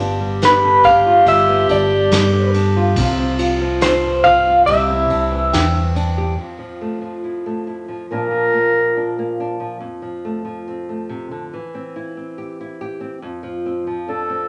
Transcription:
Already playing: G1 G2 B3 F4 G4
0.00 D4, ride
0.20 G3
0.41 B3 B4, snare, ride
0.63 D3
0.83 D4 F5, kick, ride
1.06 F4
1.26 G1 G2 F4 E5, ride
1.48 B3
1.69 G1 D4 D5, ride
1.90 G3
2.11 G2 B3, snare, ride
2.32 D3
2.54 D4, ride
2.77 F4
2.96 C2 C3 F3 C4 F4, kick, ride
3.19 C4
3.39 F4, ride
3.61 F3
3.81 C4 C5, snare, ride
4.04 G2
4.24 F4 F5, kick, ride
4.47 F4
4.66 C2 C3 E4 G4 E5, ride
4.90 C4
5.10 C2 D4, ride
5.31 E3
5.53 E2 C4 G5, snare, ride
5.74 G2
5.96 D4, ride
6.18 G4
6.38 F2
6.59 F3
6.81 A3
7.01 F3
7.24 E4
7.46 A3
7.67 E4
7.88 F3
8.11 A#2 F3 A#3 D4 A#4
8.31 F3
8.54 A#3
8.76 F3
8.97 D4
9.19 A#3
9.40 D4
9.60 F3
9.81 F2
10.02 F3
10.25 A3
10.45 F3
10.68 C4
10.89 A3
11.09 C3
11.31 D3
11.53 E3
11.75 C4
11.96 E4
12.17 C4
12.38 G4
12.61 E4
12.81 G4
13.00 C4
13.22 F2
13.43 F3
13.66 C4
13.87 F3
14.08 D4 A4
14.29 C4

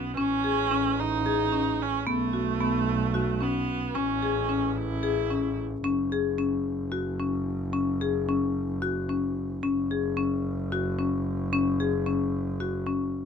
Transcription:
Already playing: B1 B3
0.16 A1 C#4
0.44 G#4
0.71 C#4
0.99 D#4
1.26 G#4
1.52 C#4
1.82 C#4
2.06 B1 A3 B3
2.33 F#4
2.60 B3
3.14 F#4
3.41 B3 C#4
3.95 A1 C#4
4.22 G#4
4.49 C#4
4.77 E4
5.03 G#4
5.30 C#4
5.83 F#1 C#4
6.12 G#4
6.38 C#4
6.92 F#4
7.20 C#4
7.73 C#4
8.01 G#4
8.29 C#4
8.82 F#4
9.09 C#4
9.62 F#1 C#4
9.91 G#4
10.17 C#4
10.72 F#4
10.99 C#4
11.53 C#4
11.80 G#4
12.06 C#4
12.60 F#4
12.86 C#4

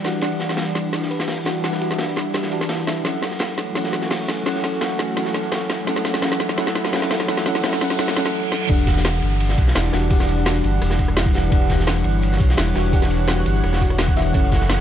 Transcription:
Already playing: E3 G3 D4 G4 F#5
0.03 E3 D4 F#4 G4 F#5, snare, closed hi-hat, ride
0.20 E3 D4 E4 G4, snare, closed hi-hat, ride
0.25 F#5
0.32 ride
0.40 snare, closed hi-hat, ride
0.49 snare
0.57 snare, closed hi-hat, ride
0.75 snare, closed hi-hat, ride
0.93 snare, closed hi-hat, ride
1.02 snare
1.11 B4, closed hi-hat, ride
1.19 snare
1.28 snare, closed hi-hat, open hi-hat
1.44 E3 D4 F#4 G4 F#5, cross-stick, snare, closed hi-hat, ride
1.61 E3 D4 G4, snare, closed hi-hat, ride
1.66 F#5
1.72 cross-stick, snare
1.81 F#4, closed hi-hat, ride
1.91 snare
1.99 snare, closed hi-hat, ride
2.16 snare, closed hi-hat, ride
2.34 G4, cross-stick, snare, closed hi-hat, ride
2.43 cross-stick, snare
2.50 E3 D4 F#4 G4 A5, closed hi-hat, ride
2.61 cross-stick, snare, ride
2.69 snare, closed hi-hat, ride
2.87 E5, snare, closed hi-hat, ride
3.02 F#3 A3 C#4 E4 F#4 A4, snare, closed hi-hat, ride, riser
3.07 F#5
3.13 ride
3.22 snare, closed hi-hat, ride
3.31 snare
3.39 snare, closed hi-hat, ride
3.58 snare, closed hi-hat, ride
3.73 F#3 C#4 E4 A4, snare, closed hi-hat, ride
3.78 F#5
3.84 snare
3.93 snare, closed hi-hat, ride
4.02 snare
4.11 snare, closed hi-hat, open hi-hat
4.28 snare, closed hi-hat, ride
4.43 F#3 C#4 E4 A4, snare, closed hi-hat, ride
4.48 F#5
4.55 snare
4.64 snare, closed hi-hat, ride
4.81 snare, closed hi-hat, ride
4.99 snare, closed hi-hat, ride
5.14 F#3 C#4 E4 A4, snare, closed hi-hat, ride
5.19 F#5
5.25 snare
5.34 snare, closed hi-hat, ride
5.44 ride
5.52 snare, closed hi-hat, ride
5.69 snare, closed hi-hat, ride
5.85 F#3 C#4 E4 A4, snare, closed hi-hat, ride
5.90 F#5
5.96 snare, ride
6.05 snare, closed hi-hat, ride
6.14 snare
6.20 F#3 C#4 E4 A4, snare, closed hi-hat, ride
6.25 F#5
6.32 snare
6.40 snare, closed hi-hat
6.49 snare
6.56 F#3 C#4 E4 A4, snare, closed hi-hat, ride
6.61 F#5
6.66 snare
6.75 snare, closed hi-hat, ride
6.85 snare
6.91 F#3 C#4 E4 A4, snare, closed hi-hat, open hi-hat
6.96 F#5
7.02 snare
7.11 snare, closed hi-hat, ride
7.20 snare
7.26 F#3 C#4 E4 A4, snare, closed hi-hat, ride
7.31 F#5
7.37 snare
7.44 F#3 C#4 E4 A4, snare, closed hi-hat, ride
7.49 F#5
7.55 snare
7.61 F#3 C#4 E4 A4, snare, closed hi-hat, ride
7.66 F#5
7.73 snare
7.79 F#3 C#4 E4 A4, snare, closed hi-hat, ride
7.84 F#5
7.90 snare
7.97 F#3 C#4 E4 A4, snare, closed hi-hat, ride, reverse cymbal
8.02 F#5
8.08 snare
8.14 F#3 C#4 E4 A4, snare, closed hi-hat, ride
8.19 F#5
8.26 snare, ride
8.52 snare
8.67 E1 E3 G3 D4 G4 F#5, kick, closed hi-hat, ride, downlifter
8.72 F#5
8.79 ride
8.87 kick, snare, closed hi-hat, ride
8.97 snare
9.05 snare, closed hi-hat, ride
9.22 G1, closed hi-hat, ride
9.40 closed hi-hat, ride
9.49 snare
9.58 B1, kick, closed hi-hat, ride
9.68 snare
9.75 E1 E4, snare, closed hi-hat, open hi-hat
9.92 E1 E3 D4 F#4 G4 F#5, cross-stick, snare, closed hi-hat, ride
10.08 E3 D4 G4, kick, closed hi-hat, ride
10.13 F#5
10.20 cross-stick, snare
10.29 closed hi-hat, ride
10.46 F#4, snare, closed hi-hat, ride
10.64 G1, closed hi-hat, ride
10.81 E1, cross-stick, closed hi-hat, ride
10.90 cross-stick, snare
10.99 kick, closed hi-hat, ride
11.08 cross-stick, ride
11.16 E4, snare, closed hi-hat, ride
11.26 kick
11.33 E1 E3 D4 G4 F#5, snare, closed hi-hat, ride
11.49 E1 E3 D4 G4 C#5, kick, closed hi-hat, ride
11.54 F#5
11.62 ride
11.70 kick, snare, closed hi-hat, ride
11.79 snare
11.87 snare, closed hi-hat, ride
12.04 G1, closed hi-hat, ride
12.23 closed hi-hat, ride
12.32 snare
12.40 B1, kick, closed hi-hat, ride
12.49 snare
12.57 E1 E4, snare, closed hi-hat, open hi-hat
12.74 E1 E3 D4 F#4 G4 F#5, cross-stick, snare, closed hi-hat, ride
12.91 E3 D4 G4, kick, closed hi-hat, ride
12.96 F#5
13.02 cross-stick, snare
13.11 closed hi-hat, ride
13.28 F#4, snare, closed hi-hat, ride
13.46 G1, closed hi-hat, ride
13.63 E1, cross-stick, closed hi-hat, ride
13.73 cross-stick, snare
13.81 F#4, kick, closed hi-hat, ride
13.90 cross-stick, ride
13.98 snare, closed hi-hat, ride
14.08 kick
14.15 E1 E3 D4 G4 E5 F#5, snare, closed hi-hat, ride
14.32 F#1 F#3 A3 C#4 E4 A4, kick, closed hi-hat, ride
14.37 F#5
14.45 ride
14.52 kick, snare, closed hi-hat, ride
14.61 snare
14.70 snare, closed hi-hat, ride

